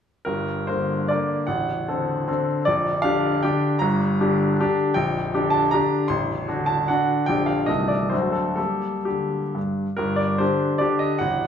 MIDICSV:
0, 0, Header, 1, 2, 480
1, 0, Start_track
1, 0, Key_signature, -2, "minor"
1, 0, Tempo, 404313
1, 312, Time_signature, 3, 2, 24, 8
1, 2711, Tempo, 380228
1, 7511, Tempo, 397351
1, 8951, Tempo, 434153
1, 10391, Tempo, 491400
1, 11351, Tempo, 422238
1, 12791, Tempo, 397878
1, 13563, End_track
2, 0, Start_track
2, 0, Title_t, "Grand piano"
2, 0, Program_c, 0, 0
2, 295, Note_on_c, 0, 70, 56
2, 312, Note_on_c, 0, 43, 41
2, 314, Note_on_c, 0, 31, 45
2, 542, Control_c, 0, 64, 127
2, 798, Note_on_c, 0, 72, 60
2, 799, Note_off_c, 0, 43, 0
2, 800, Note_off_c, 0, 31, 0
2, 806, Note_off_c, 0, 70, 0
2, 813, Note_on_c, 0, 50, 34
2, 815, Note_on_c, 0, 58, 34
2, 825, Note_on_c, 0, 70, 38
2, 1249, Note_off_c, 0, 50, 0
2, 1250, Note_off_c, 0, 58, 0
2, 1255, Note_off_c, 0, 70, 0
2, 1287, Note_on_c, 0, 74, 59
2, 1289, Note_off_c, 0, 72, 0
2, 1308, Control_c, 0, 64, 0
2, 1312, Note_on_c, 0, 50, 39
2, 1313, Note_on_c, 0, 58, 42
2, 1319, Note_on_c, 0, 70, 40
2, 1713, Note_off_c, 0, 50, 0
2, 1714, Note_off_c, 0, 58, 0
2, 1717, Note_off_c, 0, 70, 0
2, 1741, Note_on_c, 0, 78, 67
2, 1745, Note_off_c, 0, 74, 0
2, 1750, Note_on_c, 0, 21, 39
2, 1754, Note_on_c, 0, 33, 50
2, 1983, Control_c, 0, 64, 127
2, 2217, Note_off_c, 0, 21, 0
2, 2219, Note_off_c, 0, 33, 0
2, 2234, Note_on_c, 0, 50, 39
2, 2238, Note_on_c, 0, 69, 42
2, 2243, Note_on_c, 0, 60, 38
2, 2665, Note_off_c, 0, 50, 0
2, 2667, Note_off_c, 0, 69, 0
2, 2669, Note_off_c, 0, 60, 0
2, 2703, Note_on_c, 0, 50, 44
2, 2704, Note_on_c, 0, 60, 44
2, 2714, Note_on_c, 0, 69, 43
2, 2727, Control_c, 0, 64, 0
2, 2946, Note_off_c, 0, 78, 0
2, 3133, Note_off_c, 0, 50, 0
2, 3134, Note_off_c, 0, 60, 0
2, 3139, Note_off_c, 0, 69, 0
2, 3177, Note_on_c, 0, 74, 73
2, 3200, Note_on_c, 0, 34, 52
2, 3201, Note_on_c, 0, 22, 51
2, 3422, Control_c, 0, 64, 127
2, 3640, Note_on_c, 0, 77, 84
2, 3661, Note_off_c, 0, 34, 0
2, 3662, Note_off_c, 0, 22, 0
2, 3664, Note_off_c, 0, 74, 0
2, 3664, Note_on_c, 0, 50, 44
2, 3667, Note_on_c, 0, 62, 46
2, 3676, Note_on_c, 0, 67, 51
2, 4109, Note_off_c, 0, 50, 0
2, 4111, Note_off_c, 0, 62, 0
2, 4116, Note_off_c, 0, 67, 0
2, 4147, Note_off_c, 0, 77, 0
2, 4153, Note_on_c, 0, 79, 66
2, 4173, Note_on_c, 0, 50, 49
2, 4176, Control_c, 0, 64, 0
2, 4180, Note_on_c, 0, 62, 50
2, 4180, Note_on_c, 0, 67, 51
2, 4588, Note_off_c, 0, 50, 0
2, 4592, Note_off_c, 0, 62, 0
2, 4592, Note_off_c, 0, 67, 0
2, 4613, Note_on_c, 0, 82, 77
2, 4624, Note_off_c, 0, 79, 0
2, 4640, Note_on_c, 0, 43, 55
2, 4641, Note_on_c, 0, 31, 64
2, 4860, Control_c, 0, 64, 127
2, 5107, Note_off_c, 0, 43, 0
2, 5108, Note_off_c, 0, 31, 0
2, 5139, Note_on_c, 0, 50, 47
2, 5139, Note_on_c, 0, 62, 44
2, 5144, Note_on_c, 0, 67, 50
2, 5577, Note_off_c, 0, 62, 0
2, 5578, Note_off_c, 0, 50, 0
2, 5581, Note_off_c, 0, 67, 0
2, 5626, Control_c, 0, 64, 0
2, 5628, Note_on_c, 0, 50, 48
2, 5640, Note_on_c, 0, 62, 53
2, 5643, Note_on_c, 0, 67, 56
2, 5846, Note_off_c, 0, 82, 0
2, 6048, Note_off_c, 0, 50, 0
2, 6054, Note_off_c, 0, 62, 0
2, 6056, Note_off_c, 0, 67, 0
2, 6069, Note_on_c, 0, 79, 82
2, 6088, Note_on_c, 0, 34, 58
2, 6096, Note_on_c, 0, 22, 53
2, 6331, Control_c, 0, 64, 127
2, 6551, Note_off_c, 0, 34, 0
2, 6555, Note_off_c, 0, 22, 0
2, 6576, Note_on_c, 0, 67, 52
2, 6578, Note_on_c, 0, 50, 45
2, 6581, Note_on_c, 0, 62, 45
2, 6776, Note_on_c, 0, 81, 71
2, 6801, Note_off_c, 0, 79, 0
2, 7006, Note_off_c, 0, 67, 0
2, 7007, Note_off_c, 0, 50, 0
2, 7009, Note_off_c, 0, 62, 0
2, 7031, Note_off_c, 0, 81, 0
2, 7038, Note_on_c, 0, 82, 75
2, 7059, Control_c, 0, 64, 0
2, 7072, Note_on_c, 0, 50, 49
2, 7074, Note_on_c, 0, 62, 45
2, 7076, Note_on_c, 0, 67, 53
2, 7478, Note_off_c, 0, 50, 0
2, 7479, Note_off_c, 0, 62, 0
2, 7480, Note_off_c, 0, 67, 0
2, 7504, Note_on_c, 0, 84, 76
2, 7506, Note_off_c, 0, 82, 0
2, 7519, Note_on_c, 0, 33, 59
2, 7528, Note_on_c, 0, 21, 47
2, 7760, Control_c, 0, 64, 127
2, 7974, Note_off_c, 0, 33, 0
2, 7978, Note_off_c, 0, 21, 0
2, 7988, Note_on_c, 0, 50, 41
2, 7993, Note_on_c, 0, 62, 37
2, 8000, Note_on_c, 0, 66, 46
2, 8206, Note_on_c, 0, 81, 70
2, 8231, Note_off_c, 0, 84, 0
2, 8434, Note_off_c, 0, 50, 0
2, 8436, Note_off_c, 0, 62, 0
2, 8440, Note_off_c, 0, 66, 0
2, 8465, Note_off_c, 0, 81, 0
2, 8471, Note_on_c, 0, 78, 67
2, 8486, Note_on_c, 0, 50, 42
2, 8491, Note_on_c, 0, 66, 47
2, 8494, Control_c, 0, 64, 0
2, 8498, Note_on_c, 0, 62, 44
2, 8907, Note_off_c, 0, 50, 0
2, 8910, Note_off_c, 0, 66, 0
2, 8914, Note_off_c, 0, 62, 0
2, 8933, Note_on_c, 0, 79, 77
2, 8946, Note_off_c, 0, 78, 0
2, 8951, Note_on_c, 0, 50, 39
2, 8953, Note_on_c, 0, 22, 47
2, 8960, Note_on_c, 0, 34, 54
2, 8969, Note_on_c, 0, 62, 35
2, 8974, Note_on_c, 0, 67, 36
2, 9141, Control_c, 0, 64, 127
2, 9154, Note_on_c, 0, 77, 55
2, 9161, Note_off_c, 0, 79, 0
2, 9362, Note_off_c, 0, 50, 0
2, 9371, Note_off_c, 0, 62, 0
2, 9373, Note_off_c, 0, 67, 0
2, 9377, Note_on_c, 0, 75, 68
2, 9388, Note_on_c, 0, 36, 46
2, 9394, Note_off_c, 0, 22, 0
2, 9396, Note_on_c, 0, 51, 34
2, 9397, Note_off_c, 0, 34, 0
2, 9398, Note_off_c, 0, 77, 0
2, 9398, Note_on_c, 0, 24, 42
2, 9398, Note_on_c, 0, 57, 34
2, 9407, Note_on_c, 0, 69, 34
2, 9419, Control_c, 0, 64, 0
2, 9616, Note_on_c, 0, 74, 47
2, 9627, Control_c, 0, 64, 127
2, 9634, Note_off_c, 0, 75, 0
2, 9841, Note_off_c, 0, 51, 0
2, 9841, Note_off_c, 0, 57, 0
2, 9846, Note_off_c, 0, 69, 0
2, 9856, Note_on_c, 0, 72, 55
2, 9866, Note_off_c, 0, 36, 0
2, 9868, Note_on_c, 0, 26, 37
2, 9871, Note_off_c, 0, 24, 0
2, 9873, Note_off_c, 0, 74, 0
2, 9879, Note_on_c, 0, 57, 29
2, 9882, Note_on_c, 0, 38, 44
2, 9882, Note_on_c, 0, 50, 30
2, 9892, Note_on_c, 0, 66, 30
2, 9906, Control_c, 0, 64, 0
2, 10104, Control_c, 0, 64, 127
2, 10105, Note_on_c, 0, 69, 49
2, 10119, Note_off_c, 0, 72, 0
2, 10341, Note_off_c, 0, 57, 0
2, 10342, Note_off_c, 0, 50, 0
2, 10348, Note_off_c, 0, 66, 0
2, 10349, Note_off_c, 0, 69, 0
2, 10364, Note_off_c, 0, 26, 0
2, 10365, Note_on_c, 0, 69, 57
2, 10371, Note_off_c, 0, 38, 0
2, 10384, Note_on_c, 0, 58, 30
2, 10384, Note_on_c, 0, 67, 33
2, 10386, Note_on_c, 0, 55, 35
2, 10402, Control_c, 0, 64, 0
2, 10601, Control_c, 0, 64, 127
2, 10728, Note_off_c, 0, 55, 0
2, 10775, Note_off_c, 0, 58, 0
2, 10775, Note_off_c, 0, 67, 0
2, 10852, Note_on_c, 0, 67, 39
2, 10865, Note_off_c, 0, 69, 0
2, 10876, Note_on_c, 0, 50, 37
2, 11208, Note_off_c, 0, 50, 0
2, 11335, Note_on_c, 0, 43, 34
2, 11339, Note_off_c, 0, 67, 0
2, 11367, Control_c, 0, 64, 0
2, 11679, Note_off_c, 0, 43, 0
2, 11808, Note_on_c, 0, 70, 67
2, 11824, Note_on_c, 0, 43, 52
2, 11828, Note_on_c, 0, 31, 44
2, 12032, Note_on_c, 0, 74, 64
2, 12054, Note_off_c, 0, 70, 0
2, 12056, Control_c, 0, 64, 127
2, 12283, Note_on_c, 0, 72, 70
2, 12293, Note_off_c, 0, 43, 0
2, 12295, Note_off_c, 0, 31, 0
2, 12296, Note_off_c, 0, 74, 0
2, 12304, Note_on_c, 0, 62, 38
2, 12304, Note_on_c, 0, 67, 40
2, 12308, Note_on_c, 0, 50, 41
2, 12333, Control_c, 0, 64, 0
2, 12738, Note_on_c, 0, 74, 65
2, 12740, Note_off_c, 0, 62, 0
2, 12741, Note_off_c, 0, 67, 0
2, 12743, Note_off_c, 0, 50, 0
2, 12763, Note_on_c, 0, 50, 42
2, 12770, Note_on_c, 0, 62, 41
2, 12771, Note_on_c, 0, 67, 45
2, 12776, Note_off_c, 0, 72, 0
2, 12986, Note_on_c, 0, 75, 65
2, 13002, Note_off_c, 0, 74, 0
2, 13207, Note_off_c, 0, 50, 0
2, 13211, Note_off_c, 0, 62, 0
2, 13211, Note_off_c, 0, 67, 0
2, 13219, Note_on_c, 0, 78, 73
2, 13237, Note_on_c, 0, 21, 46
2, 13244, Note_on_c, 0, 33, 52
2, 13248, Note_off_c, 0, 75, 0
2, 13497, Control_c, 0, 64, 127
2, 13563, Note_off_c, 0, 21, 0
2, 13563, Note_off_c, 0, 33, 0
2, 13563, Note_off_c, 0, 78, 0
2, 13563, End_track
0, 0, End_of_file